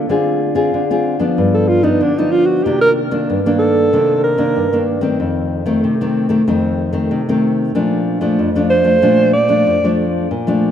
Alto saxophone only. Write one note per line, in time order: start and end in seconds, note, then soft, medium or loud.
1.54 1.70 A4 medium
1.68 1.85 F4 medium
1.83 2.03 D#4 medium
2.02 2.20 D4 medium
2.18 2.33 D#4 medium
2.31 2.48 F4 loud
2.46 2.66 F#4 medium
2.64 2.81 G4 medium
2.81 2.91 A#4 loud
3.59 4.20 A4 medium
4.24 4.84 A#4 medium
8.70 9.30 C5 medium
9.33 9.94 D5 loud